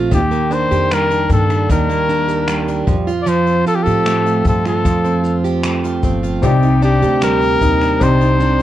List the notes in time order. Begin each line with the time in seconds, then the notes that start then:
Already playing: F3 A3 C4 F4 G4
0.11 D#2 D#3 G4, kick, shaker
0.31 A#3, shaker
0.50 D4 C5, shaker
0.71 F2 G4, shaker
0.91 G3 A#4, finger snap, shaker
1.11 D4, shaker
1.30 G2 A#3, kick, shaker
1.31 A4, shaker
1.50 D4, finger snap, shaker
1.70 D#2 D#3 A#4, kick, shaker
1.89 A#3, shaker
2.09 D4, shaker
2.28 G4, shaker
2.48 G3, finger snap, shaker
2.69 D4, shaker
2.87 F2 F3, kick, shaker
3.07 F4, shaker
3.22 D5
3.26 F3 C5, shaker
3.47 C4, shaker
3.67 F4 A4, shaker
3.75 G4
3.83 A2 G4 A4, shaker
4.06 A3, finger snap, shaker
4.26 F4, shaker
4.45 G2, kick, shaker
4.47 C4 A4, shaker
4.65 F4 A4, finger snap, shaker
4.85 F2 F3, kick, shaker
5.05 C4, shaker
5.24 F4, shaker
5.44 G4, shaker
5.63 A3, finger snap, shaker
5.84 F4, shaker
6.03 G1 C4, kick, shaker
6.23 F4, shaker
6.42 C2 C3 C4 D#4 G4 D5, kick, shaker
6.62 D#4, shaker
6.82 D4 G4, shaker
7.02 D2 G4, shaker
7.21 G3 A#4, finger snap, shaker
7.42 shaker
7.61 D#2 D#4, kick, shaker
7.81 D4, finger snap, shaker
7.99 C2 C3 C4 D#4 G4 C5 D5, kick, shaker
8.21 D#4, shaker
8.40 D4, shaker